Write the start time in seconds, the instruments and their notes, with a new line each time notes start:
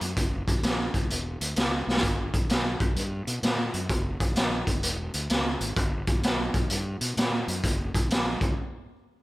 0.01 fingered electric bass F#2, closed hi-hat
0.17 fingered electric bass F#1, kick, closed hi-hat
0.48 fingered electric bass B1, kick, closed hi-hat
0.63 fingered electric bass A#1, snare, closed hi-hat
0.94 fingered electric bass C#2, kick, closed hi-hat
1.10 fingered electric bass E1, closed hi-hat
1.41 fingered electric bass D2, closed hi-hat
1.56 fingered electric bass C#2, snare, closed hi-hat
1.87 fingered electric bass B1, snare
1.97 snare
2.03 fingered electric bass G1, kick, closed hi-hat
2.34 fingered electric bass B1, kick, closed hi-hat
2.49 fingered electric bass B1, snare, closed hi-hat
2.80 fingered electric bass B1, kick, closed hi-hat
2.96 fingered electric bass G2, closed hi-hat
3.27 fingered electric bass B2, closed hi-hat
3.43 fingered electric bass A#2, snare, closed hi-hat
3.74 fingered electric bass F#2, closed hi-hat
3.89 fingered electric bass F#1, kick, closed hi-hat
4.20 fingered electric bass B1, kick, closed hi-hat
4.36 fingered electric bass A#1, snare, closed hi-hat
4.67 fingered electric bass F#1, kick, closed hi-hat
4.83 fingered electric bass E1, closed hi-hat
5.14 fingered electric bass D2, closed hi-hat
5.30 fingered electric bass C#2, snare, closed hi-hat
5.61 fingered electric bass G#1, closed hi-hat
5.76 fingered electric bass G1, kick, closed hi-hat
6.07 fingered electric bass B1, kick, closed hi-hat
6.23 fingered electric bass B1, snare, closed hi-hat
6.54 fingered electric bass B1, kick, closed hi-hat
6.70 fingered electric bass G2, closed hi-hat
7.01 fingered electric bass B2, closed hi-hat
7.17 fingered electric bass A#2, snare, closed hi-hat
7.48 fingered electric bass F#2, closed hi-hat
7.64 fingered electric bass F#1, kick, closed hi-hat
7.95 fingered electric bass B1, kick, closed hi-hat
8.10 fingered electric bass A#1, snare, closed hi-hat
8.41 fingered electric bass C#2, kick, closed hi-hat